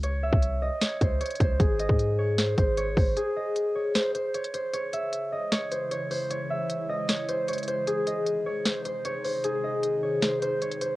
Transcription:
<<
  \new Staff \with { instrumentName = "Harp" } { \time 4/4 \key cis \minor \tempo 4 = 153 cis''8 e''4 dis''8 cis''8 bis'8 cis''8 bis'8 | gis'8 dis''4 cis''8 bis'8 bis'8 cis''8 bis'8 | gis'8 dis''4 cis''8 bis'8 bis'8 cis''8 bis'8 | cis''8 e''4 dis''8 cis''8 bis'8 cis''8 bis'8 |
cis''8 e''4 dis''8 cis''8 bis'8 cis''8 bis'8 | gis'8 dis''4 cis''8 bis'8 bis'8 cis''8 bis'8 | gis'8 dis''4 cis''8 bis'8 bis'8 cis''8 bis'8 | }
  \new Staff \with { instrumentName = "Ambient pad" } { \clef bass \time 4/4 \key cis \minor << { r1 | r1 | r1 | <cis e e'>1~ |
<cis e e'>1 | <bis, dis dis'>1~ | <bis, dis dis'>1 | } \\ { r1 | r1 | r1 | gis1~ |
gis1~ | gis1~ | gis1 | } >> }
  \new Staff \with { instrumentName = "808-style bass" } { \clef bass \time 4/4 \key cis \minor cis,8. bis,,4 r8. cis,8 r8 cis,8 | gis,,8. gis,4.~ gis,16 gis,,4 gis,,8 | r1 | r1 |
r1 | r1 | r1 | }
  \new DrumStaff \with { instrumentName = "Drums" } \drummode { \time 4/4 hh8. bd16 hh4 <hh sn>8 <hh bd>8 hh32 hh32 hh32 hh32 <hh bd>8 | <hh bd>8 hh16 bd16 hh4 <hh sn>8 <hh bd>8 hh8 <hho bd>8 | hh4 hh4 <hh sn>8 hh8 hh16 hh16 hh8 | hh8 hh8 hh4 <hh sn>8 hh8 hh8 hho8 |
hh4 hh4 <hh sn>8 hh8 hh32 hh32 hh32 hh32 hh8 | hh8 hh8 hh4 <hh sn>8 hh8 hh8 hho8 | hh4 hh4 <hh sn>8 hh8 hh16 hh16 hh8 | }
>>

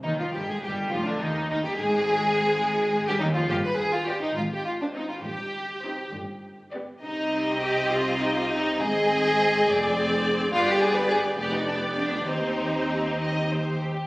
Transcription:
<<
  \new Staff \with { instrumentName = "Violin section" } { \time 6/8 \key c \minor \tempo 4. = 68 ees'16 f'16 g'16 aes'16 g'8 f'16 d'16 ees'8 ees'16 g'16 | aes'2~ aes'16 g'16 ees'16 f'16 | r4 d''8 r4 c''8 | r4 c''8 r4 d''8 |
ees''2. | ees''4. d''4. | d''4. d''4. | c''4. ees''8 c''8 g'8 | }
  \new Staff \with { instrumentName = "Violin section" } { \time 6/8 \key c \minor ees'16 f'16 g'16 aes'16 g'8 f'16 d'16 ees'8 ees'16 g'16 | aes'2~ aes'16 g'16 ees'16 f'16 | g'16 b'16 aes'16 f'16 g'16 ees'16 f'16 g'16 f'16 d'16 ees'16 f'16 | g'4. r4. |
ees'4 g'8 f'8 ees'16 f'16 ees'8 | aes'2~ aes'8 r8 | f'16 g'16 aes'16 b'16 aes'8 g'16 ees'16 d'8 d'8 | ees'2~ ees'8 r8 | }
  \new Staff \with { instrumentName = "Viola section" } { \time 6/8 \key c \minor ees16 f16 g16 aes16 g8 f16 d16 ees8 ees16 g16 | aes2~ aes16 g16 ees16 f16 | r4 <b f'>8 r4 <c' ees'>8 | r4 <c' ees'>8 r4 <b g'>8 |
<c' g'>2. | <c' aes'>4. <c' aes'>4. | <b g'>4. <b g'>4. | <c' g'>2~ <c' g'>8 r8 | }
  \new Staff \with { instrumentName = "Cello section" } { \clef bass \time 6/8 \key c \minor ees,16 f,16 g,16 aes,16 g,8 f,16 d,16 ees,8 ees,16 g,16 | aes,2~ aes,16 g,16 ees,16 f,16 | g,4. aes,4. | g,4. g,4. |
c2. | aes,4. f,4. | g,4. f,4. | ees,2~ ees,8 r8 | }
  \new Staff \with { instrumentName = "Double bass section" } { \clef bass \time 6/8 \key c \minor ees,16 r16 g,,16 r16 g,,8 f,,16 r16 ees,8 ees,16 r16 | aes,,2~ aes,,16 r16 ees,16 r16 | g,,4. aes,,4. | g,,4. g,,4. |
c,2. | aes,,4. f,,4. | g,,4. f,,4. | ees,2~ ees,8 r8 | }
>>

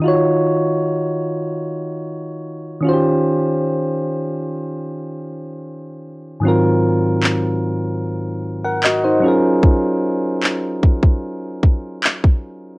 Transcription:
<<
  \new Staff \with { instrumentName = "Synth keys" } { \time 4/4 \key ees \dorian \tempo 4 = 75 << { r1 | r1 | r2 r8. <bes' ges''>16 <ges' ees''>16 <ees' c''>8 r16 | r1 | } \\ { <ees ees' f' ges' des''>2.~ <ees ees' f' ges' des''>8 <ees des' f' ges' g' c''>8~ | <ees des' f' ges' g' c''>2.~ <ees des' f' ges' g' c''>8 r8 | <aes, ees ges c' f' bes'>2.~ <aes, ees ges c' f' bes'>8 <ges des' f' aes' bes'>8~ | <ges des' f' aes' bes'>2.~ <ges des' f' aes' bes'>8 r8 | } >> }
  \new DrumStaff \with { instrumentName = "Drums" } \drummode { \time 4/4 r4 r4 r4 r4 | r4 r4 r4 r4 | r4 hc4 r4 hc4 | bd4 hc8 bd16 bd16 r8 bd8 hc16 bd8. | }
>>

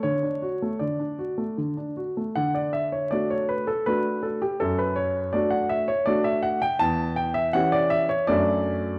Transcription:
\new Staff \with { instrumentName = "Grand piano" } { \time 3/4 \key d \major \tempo 4 = 80 << { cis''4 d''4 r4 | fis''16 d''16 e''16 cis''16 d''16 cis''16 b'16 a'16 b'8 a'16 g'16 | a'16 b'16 cis''8 d''16 fis''16 e''16 cis''16 d''16 e''16 fis''16 g''16 | a''8 g''16 e''16 fis''16 d''16 e''16 cis''16 d''4 | } \\ { d16 d'16 fis'16 a16 d16 d'16 fis'16 a16 d16 d'16 fis'16 a16 | d4 <a d' fis'>4 <a d' fis'>4 | fis,4 <a d' fis'>4 <a d' fis'>4 | e,4 <e cis' g'>4 <fis, a d' fis'>4 | } >> }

